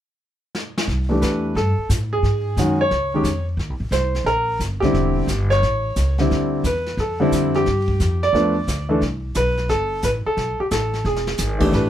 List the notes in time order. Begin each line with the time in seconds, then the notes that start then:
0.55 snare
0.78 snare
0.88 C2, brush sweep, snare
1.09 E3 A3 D4 G4
1.22 E2 B4, snare, hi-hat pedal
1.55 G2 A4, brush sweep, snare
1.78 muted upright bass stroke
1.89 A2, snare, hi-hat pedal
2.13 G#4
2.23 G#2, brush sweep, snare
2.57 F#2 D#3 G#3 C#4 F#4, snare, hi-hat pedal
2.81 C#5
2.91 C#2, brush sweep, snare
3.14 D#3 G#3 C#4 G4
3.23 F2, snare, hi-hat pedal
3.57 D#2, brush sweep, snare
3.69 C2
3.80 A#1
3.91 C2 C5, snare, hi-hat pedal
4.15 snare
4.24 A#1 A#4, brush sweep, snare
4.59 G1, snare, hi-hat pedal
4.80 D3 G3 C4 G4, kick, snare
4.85 E4
4.93 E1, brush sweep, snare
5.27 G1, snare, hi-hat pedal
5.50 C#5, snare
5.63 A1, brush sweep, snare
5.96 C#2, snare, hi-hat pedal
6.18 D3 G3 C4 E4, snare
6.30 D2, brush sweep, snare
6.64 E2 B4, snare, hi-hat pedal
6.86 snare
6.97 F2 A4, brush sweep, snare
7.20 D3 G3 C4 E4
7.32 F2, snare, hi-hat pedal
7.54 G4, snare
7.66 G2, brush sweep, snare
7.88 kick
8.00 F2, snare, hi-hat pedal
8.23 D5, snare
8.33 E2 F3 A3 B3 D4, brush sweep, snare
8.67 D2, snare, hi-hat pedal
8.89 E3 A3 D4 A4
9.01 C2, brush sweep, snare
9.35 B1 B4, snare, hi-hat pedal
9.57 snare
9.69 G1 A4, brush sweep, snare
10.02 A1 B4, snare, hi-hat pedal
10.26 A4, muted upright bass stroke
10.37 B1, brush sweep, snare
10.60 G4, muted upright bass stroke
10.71 A1 A4, snare, hi-hat pedal
10.93 snare
11.05 E1 G#4, snare
11.16 snare
11.27 snare
11.38 G#1, snare, hi-hat pedal
11.59 E3 A3 D4 G4, kick, crash
11.73 A1 B4, brush sweep, snare